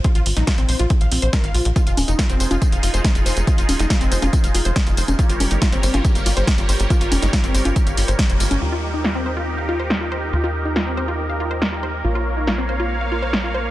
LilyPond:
<<
  \new Staff \with { instrumentName = "Supersaw synth" } { \time 4/4 \key ees \mixolydian \tempo 4 = 140 r1 | <ees' f' aes'>1~ | <ees' f' aes'>1 | <g g' bes' des''>1~ |
<g g' bes' des''>1 | <ees' g' bes'>1~ | <ees' g' bes'>1 | <bes des'' f''>1 | }
  \new Staff \with { instrumentName = "Synth pluck" } { \time 4/4 \key ees \mixolydian f'16 f'16 r16 ees'16 f'16 c'16 c''16 f'16 r16 f''16 c'16 c''16 bes'16 f''16 f'16 r16 | f'16 f'16 r16 ees'16 f'16 c'16 c''16 f'16 r16 f''16 f'16 c''16 r16 f'16 c''16 r16 | f'16 f'16 r16 ees'16 f'16 c'16 c''16 f'16 r16 f''16 f'16 c''16 r16 f'16 c''16 r16 | f'16 f'16 r16 ees'16 f'16 c'16 c''16 f'16 r16 f''16 f'16 c''16 r16 f'16 c''16 r16 |
f'16 f'16 r16 ees'16 f'16 c'16 c''16 f'16 r16 f''16 f'16 c''16 r16 c''16 f'16 r16 | f'16 f'16 r16 ees'16 f'16 c'16 c''16 f'16 r16 f''16 f'16 c''16 r16 f'16 c''16 r16 | f'16 f'16 r16 ees'16 f'16 c'16 c''16 f'16 r16 f''16 f'16 c''16 r16 f'16 c''16 r16 | f'16 f'16 r16 ees'16 f'16 c'16 c''16 f'16 r16 f''16 f'16 c''16 r16 f'16 c''16 r16 | }
  \new Staff \with { instrumentName = "Analog synth bass" } { \clef bass \time 4/4 \key ees \mixolydian r16 bes,,16 aes,,16 bes,,16 r16 bes,,16 bes,,16 bes,,16 r16 bes,,16 bes,,16 bes,,16 r16 aes,,16 bes,,16 bes,,16 | r16 f,,16 ees,,16 f,,16 r16 f,,16 f,,16 f,,16 r16 f,,16 f,,16 f,,16 r16 f,,16 f,,16 f,,16 | r16 f,,16 ees,,16 f,,16 r16 f,,16 f,,16 f,,16 r16 f,,16 f,,16 f,,16 r16 f,,16 f,,16 f,,16 | r16 g,,16 f,,16 g,,16 r16 g,,16 g,,16 g,,16 r16 g,,16 g,,16 g,,16 r16 g,,16 g,,16 g,,16 |
r16 g,,16 f,,16 g,,16 r16 g,,16 g,,16 g,,16 r16 g,,16 g,,16 g,,16 r16 f,,16 g,,16 g,,16 | ees,1 | ees,1 | bes,,1 | }
  \new DrumStaff \with { instrumentName = "Drums" } \drummode { \time 4/4 <hh bd>16 hh16 hho16 <hh sn>16 <hh bd sn>16 hh16 hho16 hh16 <hh bd>16 hh16 hho16 hh16 <hh bd sn>16 hh16 hho16 hh16 | <hh bd tamb>16 <hh tamb>16 <cgho hho tamb>16 <hh tamb>16 <hh bd sn tamb>16 <hh tamb>16 <hho tamb>16 <cgho hh tamb>16 <hh bd tamb>16 <hh tamb>16 <hho tamb>16 <hh tamb>16 <hh bd sn tamb>16 <hh tamb>16 <hho tamb>16 <hh tamb>16 | <hh bd tamb>16 <hh tamb>16 <cgho hho tamb>16 <hh sn tamb>16 <hh bd sn tamb>16 <hh tamb>16 <hho tamb>16 <cgho hh tamb>16 <hh bd tamb>16 <hh tamb>16 <hho tamb>16 <hh tamb>16 <hh bd sn tamb>16 <hh tamb>16 <hho tamb>16 <cgho hh tamb>16 | <hh bd tamb>16 <hh tamb>16 <cgho hho tamb>16 <hh tamb>16 <hh bd sn tamb>16 <hh tamb>16 <hho tamb>16 <cgho hh tamb>16 <hh bd tamb>16 <hh tamb>16 <hho tamb>16 <hh tamb>16 <hh bd sn tamb>16 <hh tamb>16 <hho tamb>16 <hh tamb>16 |
<hh bd tamb>16 <hh tamb>16 <cgho hho tamb>16 <hh sn tamb>16 <hh bd sn tamb>16 <hh tamb>16 <hho tamb>16 <cgho hh tamb>16 <hh bd tamb>16 <hh tamb>16 <hho tamb>16 <hh tamb>16 <hh bd sn tamb>16 <hh tamb>16 <hho tamb>16 <cgho hh tamb>16 | r4 sn4 r4 sn4 | r4 sn4 r4 sn4 | r4 sn4 r4 sn4 | }
>>